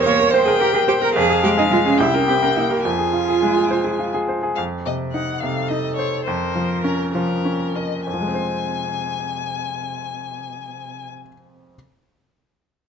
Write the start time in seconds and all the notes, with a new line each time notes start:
Already playing: E2 G4 A#4 C5
0.04 A#3 C#5
0.19 A#4
0.31 C5 G5
0.46 G#4 A#4
0.60 G4 A#4
0.73 G#4 A#4
0.88 G4 C5
1.01 A#4
1.14 F2 G#4 F5
1.30 G#4
1.44 G#3 G4
1.57 D#4 G#4
1.71 G#3 F4
1.86 C#4 G#4
1.97 C2 E4 G5
2.14 C#4 A#4
2.28 C4 G4
2.42 C#4 A#4
2.56 A#3 E4
2.70 G4 A#4
2.85 F2 F4 G#5
2.99 G#4
3.13 F4
3.28 G#4
3.43 G#3
3.56 G#4
3.71 C5
3.84 G#4
3.99 F4
4.14 G#4
4.29 C5
4.43 G#4
4.56 F2 F5
4.86 C3 D#5
5.12 D#4 F#5
5.40 C3 A4 F5
5.69 D#4 D#5
5.96 C5 C#5
6.25 F2 A#4 C5
6.55 F3
6.84 C#4 A#4
7.13 F3 C#4 A#4
7.45 C#4
7.76 A#4 D#5
8.07 F2 C3 G#5
8.14 F3
8.21 G#3
8.28 C4
8.35 C5